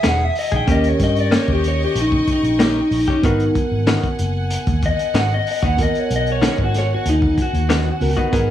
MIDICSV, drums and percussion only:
0, 0, Header, 1, 2, 480
1, 0, Start_track
1, 0, Key_signature, 5, "minor"
1, 0, Tempo, 636943
1, 515, Time_signature, 4, 2, 24, 8
1, 6409, End_track
2, 0, Start_track
2, 0, Title_t, "Drums"
2, 25, Note_on_c, 9, 42, 89
2, 29, Note_on_c, 9, 38, 109
2, 100, Note_off_c, 9, 42, 0
2, 104, Note_off_c, 9, 38, 0
2, 266, Note_on_c, 9, 46, 88
2, 342, Note_off_c, 9, 46, 0
2, 389, Note_on_c, 9, 42, 39
2, 392, Note_on_c, 9, 36, 77
2, 464, Note_off_c, 9, 42, 0
2, 468, Note_off_c, 9, 36, 0
2, 508, Note_on_c, 9, 42, 88
2, 510, Note_on_c, 9, 36, 122
2, 584, Note_off_c, 9, 42, 0
2, 586, Note_off_c, 9, 36, 0
2, 632, Note_on_c, 9, 42, 42
2, 707, Note_off_c, 9, 42, 0
2, 751, Note_on_c, 9, 36, 88
2, 751, Note_on_c, 9, 42, 64
2, 755, Note_on_c, 9, 38, 34
2, 826, Note_off_c, 9, 42, 0
2, 827, Note_off_c, 9, 36, 0
2, 830, Note_off_c, 9, 38, 0
2, 877, Note_on_c, 9, 42, 38
2, 952, Note_off_c, 9, 42, 0
2, 993, Note_on_c, 9, 42, 79
2, 997, Note_on_c, 9, 38, 109
2, 1068, Note_off_c, 9, 42, 0
2, 1072, Note_off_c, 9, 38, 0
2, 1116, Note_on_c, 9, 36, 82
2, 1191, Note_off_c, 9, 36, 0
2, 1235, Note_on_c, 9, 42, 61
2, 1310, Note_off_c, 9, 42, 0
2, 1473, Note_on_c, 9, 42, 77
2, 1549, Note_off_c, 9, 42, 0
2, 1598, Note_on_c, 9, 36, 85
2, 1673, Note_off_c, 9, 36, 0
2, 1715, Note_on_c, 9, 36, 83
2, 1715, Note_on_c, 9, 42, 59
2, 1790, Note_off_c, 9, 42, 0
2, 1791, Note_off_c, 9, 36, 0
2, 1841, Note_on_c, 9, 42, 41
2, 1917, Note_off_c, 9, 42, 0
2, 1956, Note_on_c, 9, 42, 82
2, 1960, Note_on_c, 9, 38, 113
2, 2032, Note_off_c, 9, 42, 0
2, 2035, Note_off_c, 9, 38, 0
2, 2197, Note_on_c, 9, 46, 80
2, 2273, Note_off_c, 9, 46, 0
2, 2320, Note_on_c, 9, 36, 76
2, 2320, Note_on_c, 9, 42, 38
2, 2395, Note_off_c, 9, 36, 0
2, 2396, Note_off_c, 9, 42, 0
2, 2437, Note_on_c, 9, 42, 82
2, 2438, Note_on_c, 9, 36, 119
2, 2513, Note_off_c, 9, 36, 0
2, 2513, Note_off_c, 9, 42, 0
2, 2561, Note_on_c, 9, 42, 41
2, 2636, Note_off_c, 9, 42, 0
2, 2678, Note_on_c, 9, 36, 90
2, 2679, Note_on_c, 9, 42, 61
2, 2754, Note_off_c, 9, 36, 0
2, 2754, Note_off_c, 9, 42, 0
2, 2915, Note_on_c, 9, 42, 83
2, 2919, Note_on_c, 9, 38, 107
2, 2991, Note_off_c, 9, 42, 0
2, 2994, Note_off_c, 9, 38, 0
2, 3040, Note_on_c, 9, 42, 41
2, 3041, Note_on_c, 9, 36, 78
2, 3115, Note_off_c, 9, 42, 0
2, 3116, Note_off_c, 9, 36, 0
2, 3156, Note_on_c, 9, 42, 65
2, 3231, Note_off_c, 9, 42, 0
2, 3394, Note_on_c, 9, 42, 88
2, 3470, Note_off_c, 9, 42, 0
2, 3518, Note_on_c, 9, 42, 45
2, 3520, Note_on_c, 9, 36, 85
2, 3593, Note_off_c, 9, 42, 0
2, 3595, Note_off_c, 9, 36, 0
2, 3636, Note_on_c, 9, 42, 64
2, 3637, Note_on_c, 9, 36, 89
2, 3711, Note_off_c, 9, 42, 0
2, 3713, Note_off_c, 9, 36, 0
2, 3762, Note_on_c, 9, 42, 47
2, 3837, Note_off_c, 9, 42, 0
2, 3877, Note_on_c, 9, 42, 92
2, 3881, Note_on_c, 9, 38, 115
2, 3953, Note_off_c, 9, 42, 0
2, 3956, Note_off_c, 9, 38, 0
2, 4119, Note_on_c, 9, 46, 87
2, 4194, Note_off_c, 9, 46, 0
2, 4241, Note_on_c, 9, 36, 84
2, 4242, Note_on_c, 9, 42, 42
2, 4316, Note_off_c, 9, 36, 0
2, 4318, Note_off_c, 9, 42, 0
2, 4359, Note_on_c, 9, 36, 112
2, 4359, Note_on_c, 9, 42, 88
2, 4434, Note_off_c, 9, 36, 0
2, 4434, Note_off_c, 9, 42, 0
2, 4484, Note_on_c, 9, 42, 42
2, 4559, Note_off_c, 9, 42, 0
2, 4601, Note_on_c, 9, 42, 69
2, 4677, Note_off_c, 9, 42, 0
2, 4723, Note_on_c, 9, 42, 43
2, 4798, Note_off_c, 9, 42, 0
2, 4841, Note_on_c, 9, 42, 85
2, 4845, Note_on_c, 9, 38, 102
2, 4916, Note_off_c, 9, 42, 0
2, 4920, Note_off_c, 9, 38, 0
2, 4962, Note_on_c, 9, 36, 82
2, 5037, Note_off_c, 9, 36, 0
2, 5082, Note_on_c, 9, 42, 64
2, 5086, Note_on_c, 9, 38, 38
2, 5157, Note_off_c, 9, 42, 0
2, 5161, Note_off_c, 9, 38, 0
2, 5318, Note_on_c, 9, 42, 88
2, 5393, Note_off_c, 9, 42, 0
2, 5442, Note_on_c, 9, 36, 83
2, 5517, Note_off_c, 9, 36, 0
2, 5559, Note_on_c, 9, 36, 89
2, 5561, Note_on_c, 9, 42, 62
2, 5634, Note_off_c, 9, 36, 0
2, 5636, Note_off_c, 9, 42, 0
2, 5686, Note_on_c, 9, 42, 42
2, 5761, Note_off_c, 9, 42, 0
2, 5801, Note_on_c, 9, 42, 81
2, 5805, Note_on_c, 9, 38, 112
2, 5876, Note_off_c, 9, 42, 0
2, 5880, Note_off_c, 9, 38, 0
2, 6036, Note_on_c, 9, 46, 87
2, 6112, Note_off_c, 9, 46, 0
2, 6159, Note_on_c, 9, 36, 80
2, 6160, Note_on_c, 9, 42, 40
2, 6234, Note_off_c, 9, 36, 0
2, 6235, Note_off_c, 9, 42, 0
2, 6276, Note_on_c, 9, 36, 110
2, 6276, Note_on_c, 9, 42, 87
2, 6351, Note_off_c, 9, 42, 0
2, 6352, Note_off_c, 9, 36, 0
2, 6409, End_track
0, 0, End_of_file